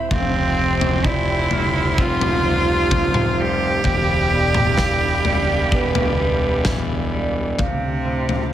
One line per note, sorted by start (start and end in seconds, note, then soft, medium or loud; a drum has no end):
0.00 0.14 G3 medium
0.00 0.10 C4 soft
0.00 0.11 E4 medium
0.00 0.14 G4 medium
0.00 3.81 C5 medium
0.00 0.11 E5 medium
0.11 3.81 F1 medium
0.11 2.45 F2 medium
0.11 1.07 C4 medium
0.11 7.55 G4 medium
0.11 0.58 F5 medium
0.11 1.97 G5 medium
0.11 3.81 C6 medium
0.11 kick medium
0.11 floor tom medium
0.57 2.91 C3 medium
0.57 1.04 C5 medium
0.81 floor tom medium
1.04 2.92 F3 medium
1.04 2.01 E4 medium
1.04 1.51 D5 medium
1.04 kick medium
1.51 2.44 G3 medium
1.51 2.45 F6 medium
1.51 floor tom medium
1.98 3.85 C4 medium
1.98 3.42 F4 medium
1.98 7.56 F5 medium
1.98 kick medium
2.21 floor tom medium
2.45 3.38 G3 medium
2.45 3.37 C5 medium
2.91 3.86 F3 medium
2.91 kick medium
2.91 floor tom medium
3.14 mid tom medium
3.38 3.86 G3 medium
3.38 6.67 G4 medium
3.38 4.32 C5 medium
3.84 7.55 E1 medium
3.84 6.19 E2 medium
3.84 7.56 D5 medium
3.84 7.57 B5 medium
3.84 kick medium
3.84 floor tom medium
4.32 6.66 B2 medium
4.32 5.25 D5 medium
4.54 floor tom medium
4.54 mid tom medium
4.78 6.66 E3 medium
4.78 kick medium
4.78 snare medium
5.25 6.19 G3 medium
5.25 5.72 D5 medium
5.25 floor tom medium
5.72 7.60 B3 medium
5.72 6.66 B4 medium
5.72 kick medium
5.95 floor tom medium
6.20 7.13 G3 medium
6.65 7.60 E3 medium
6.65 kick medium
6.65 snare medium
6.65 floor tom medium
6.65 mid tom medium
7.13 7.60 G3 medium
7.13 7.60 D5 medium
7.59 8.53 D2 medium
7.59 8.53 C3 medium
7.59 8.53 D3 medium
7.59 8.53 D4 medium
7.59 8.53 C5 medium
7.59 8.53 F5 medium
7.59 8.06 F5 medium
7.59 kick medium
7.59 floor tom medium
8.05 8.53 A2 soft
8.05 8.53 C5 medium
8.29 floor tom medium